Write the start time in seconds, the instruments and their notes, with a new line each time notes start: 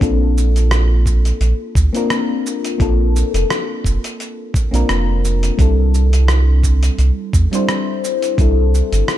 0.00 analog synth bass A#1, fm electric piano A#3 C4 D4 F4 A4, kick, closed hi-hat, cabasa
0.38 cabasa
0.56 closed hi-hat, cabasa
0.71 cross-stick, closed hi-hat, cabasa
1.06 kick, cabasa
1.25 closed hi-hat, cabasa
1.41 analog synth bass A#1, closed hi-hat, cabasa
1.75 analog synth bass D2, kick, cabasa
1.93 fm electric piano A#3 C4 D4 F4 A#4, closed hi-hat, cabasa
2.10 cross-stick, closed hi-hat, cabasa
2.47 cabasa
2.65 closed hi-hat, cabasa
2.78 analog synth bass A#1, fm electric piano A#3 C4 D4 F4 A4, kick, closed hi-hat, cabasa
3.16 cabasa
3.34 analog synth bass F1, closed hi-hat, cabasa
3.50 cross-stick, closed hi-hat, cabasa
3.84 analog synth bass F1, kick, cabasa
4.04 closed hi-hat, cabasa
4.20 closed hi-hat, cabasa
4.54 kick, cabasa
4.71 analog synth bass A#1, fm electric piano A#3 C4 D4 F4 A#4, closed hi-hat, cabasa
4.89 analog synth bass F1, cross-stick, closed hi-hat, cabasa
5.25 cabasa
5.43 closed hi-hat, cabasa
5.57 analog synth bass C2, fm electric piano G3 C4 D4 E4, kick, closed hi-hat, cabasa
5.61 fm electric piano A4
5.94 cabasa
6.13 closed hi-hat, cabasa
6.28 cross-stick, closed hi-hat, cabasa
6.63 kick, cabasa
6.83 closed hi-hat, cabasa
6.99 analog synth bass C2, closed hi-hat, cabasa
7.33 analog synth bass E2, kick, cabasa
7.51 fm electric piano G3 C4 D4 E4 C5, closed hi-hat, cabasa
7.69 cross-stick, closed hi-hat, cabasa
8.04 cabasa
8.22 closed hi-hat, cabasa
8.38 analog synth bass C2, fm electric piano G3 C4 D4 E4 A4, kick, closed hi-hat, cabasa
8.75 cabasa
8.92 analog synth bass G1, closed hi-hat, cabasa
9.08 cross-stick, closed hi-hat, cabasa